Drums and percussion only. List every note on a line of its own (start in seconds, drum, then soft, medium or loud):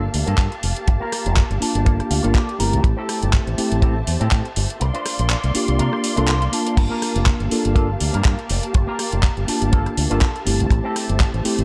0.14 open hi-hat loud
0.27 closed hi-hat soft
0.38 kick loud
0.38 clap loud
0.38 closed hi-hat medium
0.52 closed hi-hat soft
0.63 open hi-hat loud
0.76 closed hi-hat soft
0.88 kick loud
0.88 closed hi-hat medium
1.12 cross-stick medium
1.12 open hi-hat loud
1.26 closed hi-hat medium
1.36 kick loud
1.36 clap loud
1.36 closed hi-hat medium
1.51 closed hi-hat soft
1.62 open hi-hat loud
1.75 closed hi-hat medium
1.86 kick loud
1.86 closed hi-hat medium
2.00 cross-stick medium
2.00 closed hi-hat soft
2.11 open hi-hat loud
2.24 closed hi-hat medium
2.35 kick loud
2.35 clap loud
2.35 closed hi-hat medium
2.49 closed hi-hat soft
2.60 open hi-hat loud
2.73 closed hi-hat medium
2.84 kick loud
2.84 closed hi-hat medium
3.09 cross-stick medium
3.09 open hi-hat loud
3.22 closed hi-hat medium
3.33 kick loud
3.33 clap loud
3.33 closed hi-hat medium
3.47 closed hi-hat soft
3.58 open hi-hat loud
3.72 closed hi-hat medium
3.82 kick loud
3.82 closed hi-hat medium
4.07 open hi-hat medium
4.21 closed hi-hat soft
4.31 kick loud
4.31 clap loud
4.31 closed hi-hat medium
4.45 closed hi-hat soft
4.56 open hi-hat loud
4.70 closed hi-hat medium
4.81 closed hi-hat medium
4.95 closed hi-hat soft
5.06 cross-stick medium
5.06 open hi-hat medium
5.19 closed hi-hat medium
5.30 clap loud
5.30 closed hi-hat medium
5.44 closed hi-hat soft
5.55 open hi-hat loud
5.68 closed hi-hat medium
5.79 closed hi-hat medium
5.93 cross-stick medium
6.04 open hi-hat medium
6.17 closed hi-hat medium
6.28 clap loud
6.28 closed hi-hat medium
6.42 closed hi-hat soft
6.53 open hi-hat loud
6.67 closed hi-hat medium
6.77 kick loud
6.77 closed hi-hat medium
6.77 crash medium
7.02 cross-stick medium
7.02 open hi-hat loud
7.16 closed hi-hat medium
7.26 kick loud
7.26 clap loud
7.26 closed hi-hat medium
7.40 closed hi-hat soft
7.51 open hi-hat loud
7.65 closed hi-hat medium
7.76 kick loud
7.76 closed hi-hat medium
8.00 open hi-hat loud
8.14 closed hi-hat medium
8.25 kick loud
8.25 clap loud
8.25 closed hi-hat medium
8.39 closed hi-hat soft
8.50 open hi-hat loud
8.63 closed hi-hat medium
8.74 kick loud
8.74 closed hi-hat medium
8.99 cross-stick medium
8.99 open hi-hat loud
9.12 closed hi-hat medium
9.23 kick loud
9.23 clap loud
9.23 closed hi-hat medium
9.37 closed hi-hat soft
9.48 open hi-hat loud
9.62 closed hi-hat medium
9.73 kick loud
9.73 closed hi-hat medium
9.86 cross-stick medium
9.86 closed hi-hat soft
9.97 open hi-hat loud
10.11 closed hi-hat medium
10.21 kick loud
10.21 clap loud
10.21 closed hi-hat medium
10.36 closed hi-hat soft
10.47 open hi-hat loud
10.60 closed hi-hat medium
10.70 kick loud
10.70 closed hi-hat medium
10.96 cross-stick medium
10.96 open hi-hat loud
11.09 closed hi-hat medium
11.20 kick loud
11.20 clap loud
11.20 closed hi-hat medium
11.34 closed hi-hat soft
11.45 open hi-hat loud
11.59 closed hi-hat medium